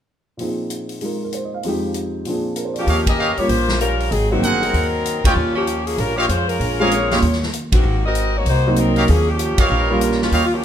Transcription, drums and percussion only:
0.39 open hi-hat soft
0.70 closed hi-hat soft
0.89 open hi-hat soft
1.01 open hi-hat soft
1.33 closed hi-hat soft
1.63 open hi-hat soft
1.94 closed hi-hat soft
2.25 open hi-hat soft
2.56 closed hi-hat soft
2.76 open hi-hat soft
2.87 open hi-hat soft
3.07 kick medium
3.07 ride medium
3.37 open hi-hat soft
3.49 open hi-hat soft
3.69 snare medium
3.81 closed hi-hat soft
4.00 open hi-hat soft
4.12 open hi-hat soft
4.43 closed hi-hat soft
4.63 open hi-hat soft
4.74 open hi-hat soft
5.06 closed hi-hat soft
5.24 kick medium
5.24 ride medium
5.67 closed hi-hat soft
5.87 open hi-hat soft
5.98 open hi-hat soft
6.29 closed hi-hat soft
6.49 open hi-hat soft
6.61 open hi-hat soft
6.91 closed hi-hat soft
7.11 snare soft
7.11 open hi-hat soft
7.22 open hi-hat soft
7.33 snare soft
7.43 snare soft
7.53 closed hi-hat soft
7.72 kick medium
7.72 ride medium
8.15 closed hi-hat soft
8.46 open hi-hat soft
8.76 closed hi-hat soft
8.96 open hi-hat soft
9.08 open hi-hat soft
9.39 closed hi-hat soft
9.58 kick medium
9.58 ride medium
10.01 closed hi-hat soft
10.11 snare soft
10.22 snare soft
10.32 open hi-hat soft

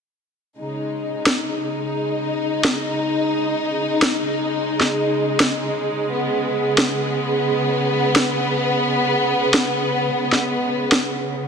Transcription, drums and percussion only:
1.26 snare loud
2.64 snare loud
4.02 snare loud
4.81 snare soft
5.40 snare loud
6.78 snare loud
8.16 snare loud
9.54 snare loud
10.32 snare soft
10.92 snare loud

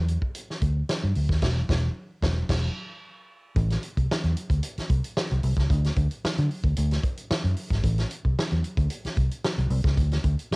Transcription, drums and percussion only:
0.08 closed hi-hat medium
0.22 kick medium
0.35 closed hi-hat loud
0.50 snare soft
0.62 kick medium
0.62 closed hi-hat medium
0.89 snare medium
0.89 closed hi-hat medium
1.15 open hi-hat medium
1.29 kick medium
1.29 snare soft
1.42 kick loud
1.42 snare loud
1.42 crash medium
1.69 kick loud
1.69 snare medium
2.22 kick loud
2.22 snare loud
2.49 kick loud
2.49 snare loud
2.49 crash medium
3.56 kick loud
3.56 closed hi-hat medium
3.70 snare soft
3.70 closed hi-hat soft
3.83 closed hi-hat medium
3.97 kick medium
3.97 closed hi-hat soft
4.12 snare loud
4.24 closed hi-hat soft
4.37 closed hi-hat medium
4.50 kick loud
4.50 closed hi-hat medium
4.63 closed hi-hat loud
4.78 snare soft
4.78 closed hi-hat soft
4.90 kick loud
4.90 closed hi-hat medium
5.04 closed hi-hat medium
5.17 snare loud
5.31 closed hi-hat soft
5.43 open hi-hat medium
5.57 kick medium
5.57 snare soft
5.57 closed hi-hat soft
5.70 kick loud
5.70 closed hi-hat medium
5.84 snare soft
5.84 closed hi-hat soft
5.96 kick loud
5.96 closed hi-hat medium
6.11 closed hi-hat soft
6.25 snare loud
6.38 closed hi-hat soft
6.51 open hi-hat soft
6.64 kick medium
6.64 closed hi-hat medium
6.76 closed hi-hat loud
6.91 snare soft
6.91 closed hi-hat soft
7.03 kick loud
7.03 closed hi-hat medium
7.17 closed hi-hat medium
7.31 snare loud
7.44 closed hi-hat soft
7.57 open hi-hat medium
7.71 kick medium
7.71 snare soft
7.71 closed hi-hat soft
7.84 kick loud
7.84 closed hi-hat medium
7.98 snare soft
7.98 closed hi-hat soft
8.11 closed hi-hat medium
8.25 kick medium
8.25 closed hi-hat soft
8.39 snare loud
8.51 closed hi-hat soft
8.64 closed hi-hat medium
8.77 kick medium
8.77 closed hi-hat medium
8.90 closed hi-hat loud
9.05 snare soft
9.05 closed hi-hat soft
9.17 kick loud
9.17 closed hi-hat medium
9.31 closed hi-hat medium
9.45 snare loud
9.58 closed hi-hat soft
9.70 open hi-hat medium
9.84 kick loud
9.84 snare soft
9.84 closed hi-hat soft
9.97 kick loud
9.97 closed hi-hat medium
10.11 snare soft
10.11 closed hi-hat soft
10.24 kick medium
10.24 closed hi-hat medium
10.39 closed hi-hat soft
10.52 snare loud

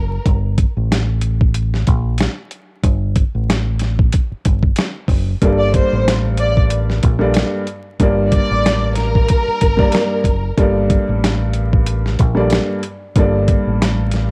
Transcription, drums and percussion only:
0.26 kick loud
0.26 closed hi-hat medium
0.58 kick medium
0.58 closed hi-hat medium
0.92 snare loud
0.92 closed hi-hat loud
1.21 closed hi-hat medium
1.41 kick medium
1.54 closed hi-hat medium
1.74 snare soft
1.87 kick medium
1.87 closed hi-hat medium
2.18 snare loud
2.18 closed hi-hat medium
2.51 closed hi-hat medium
2.84 kick loud
2.84 closed hi-hat medium
3.16 kick loud
3.16 closed hi-hat medium
3.50 snare loud
3.50 closed hi-hat loud
3.79 snare soft
3.79 closed hi-hat medium
3.99 kick medium
4.12 kick medium
4.12 closed hi-hat medium
4.45 kick loud
4.45 closed hi-hat medium
4.63 kick medium
4.76 snare loud
4.76 closed hi-hat medium
5.08 kick medium
5.08 open hi-hat soft
5.42 kick loud
5.42 closed hi-hat medium
5.74 kick loud
5.74 closed hi-hat medium
6.08 snare loud
6.08 closed hi-hat loud
6.37 closed hi-hat medium
6.57 kick medium
6.70 closed hi-hat loud
6.90 snare soft
7.03 kick loud
7.03 closed hi-hat medium
7.34 snare loud
7.34 closed hi-hat medium
7.67 closed hi-hat medium
8.00 kick loud
8.00 closed hi-hat medium
8.32 kick medium
8.32 closed hi-hat medium
8.66 snare loud
8.66 closed hi-hat loud
8.95 snare soft
8.95 closed hi-hat medium
9.15 kick medium
9.28 kick medium
9.28 closed hi-hat medium
9.61 kick loud
9.61 closed hi-hat medium
9.79 kick medium
9.92 snare loud
9.92 closed hi-hat medium
10.24 kick medium
10.24 closed hi-hat medium
10.58 kick loud
10.58 closed hi-hat medium
10.90 kick medium
10.90 closed hi-hat medium
11.24 snare loud
11.24 closed hi-hat loud
11.53 closed hi-hat medium
11.73 kick medium
11.86 closed hi-hat loud
12.06 snare soft
12.19 kick medium
12.19 closed hi-hat medium
12.50 snare loud
12.50 closed hi-hat medium
12.83 closed hi-hat medium
13.16 kick loud
13.16 closed hi-hat medium
13.48 kick medium
13.48 closed hi-hat medium
13.82 snare loud
13.82 closed hi-hat loud
14.12 snare soft
14.12 closed hi-hat medium

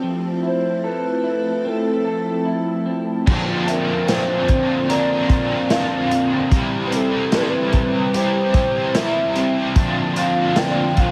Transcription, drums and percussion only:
3.27 kick loud
3.27 crash medium
3.68 closed hi-hat medium
4.08 snare loud
4.08 closed hi-hat medium
4.08 tambourine medium
4.48 kick medium
4.48 closed hi-hat soft
4.90 closed hi-hat medium
5.30 kick loud
5.30 closed hi-hat medium
5.70 snare loud
5.70 closed hi-hat medium
5.70 tambourine medium
6.11 closed hi-hat soft
6.52 kick loud
6.52 closed hi-hat medium
6.92 closed hi-hat medium
7.32 snare loud
7.32 closed hi-hat medium
7.32 tambourine medium
7.73 kick medium
7.73 closed hi-hat soft
8.14 closed hi-hat medium
8.54 kick loud
8.54 closed hi-hat medium
8.95 snare loud
8.95 closed hi-hat medium
8.95 tambourine medium
9.36 closed hi-hat soft
9.76 kick loud
9.76 closed hi-hat medium
10.16 closed hi-hat medium
10.56 snare loud
10.56 closed hi-hat medium
10.56 tambourine medium
10.97 kick medium
10.97 closed hi-hat soft

